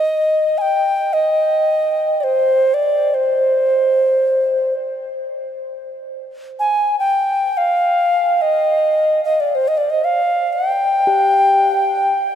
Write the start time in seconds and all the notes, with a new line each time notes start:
Already playing: D#5
0.58 G5 G#5
1.13 D#5
2.20 C5 D5
2.74 D5
3.14 C5
6.59 G#5
6.99 G5
7.57 F5
8.42 D#5
9.24 D#5
9.40 D5
9.55 C5
9.68 D#5
9.77 D5
9.90 D#5
10.04 F5
10.53 G5
11.07 G4